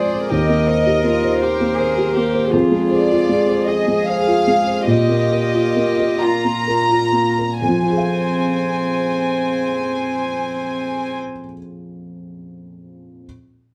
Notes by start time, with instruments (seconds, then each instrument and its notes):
Already playing: felt piano F2 G#3 F4 C5, cello G#4, viola C5, violin section D5
0.13 felt piano C5
0.30 felt piano D#2, cello G4, viola A#4, violin section D#5
0.49 felt piano A#3
0.67 cello D#4, felt piano C5
0.87 felt piano G4
1.04 felt piano A#3, cello F4
1.23 felt piano C5
1.42 cello G4, violin section C5
1.60 felt piano A#3
1.77 cello G#4, felt piano C5
1.98 felt piano G4
2.15 felt piano A#3, cello G4
2.34 felt piano C5
2.52 felt piano F2, cello F4, viola G#4
2.72 felt piano G#3
2.90 felt piano C5, violin section D5
3.11 felt piano F4
3.29 felt piano G#3
3.49 felt piano C5
3.68 cello G#4, violin section D#5
3.88 felt piano G#3
4.06 felt piano C5, violin section F5
4.27 felt piano F4
4.47 felt piano G#3
4.67 felt piano C5
4.86 felt piano A#2, viola F4, cello G4, violin section D#5
5.09 felt piano A#3
5.32 felt piano A#4
5.54 felt piano F4
5.76 felt piano A#3
5.99 felt piano A#4
6.20 cello F4, violin section A#5
6.45 felt piano A#3
6.68 felt piano A#4
6.91 felt piano F4
7.13 felt piano A#3
7.38 felt piano A#4
7.61 felt piano F2, cello C4, viola C5, violin section G#5
7.69 felt piano F3
7.77 felt piano C4
7.83 felt piano F4
7.90 felt piano G#4
7.97 felt piano F5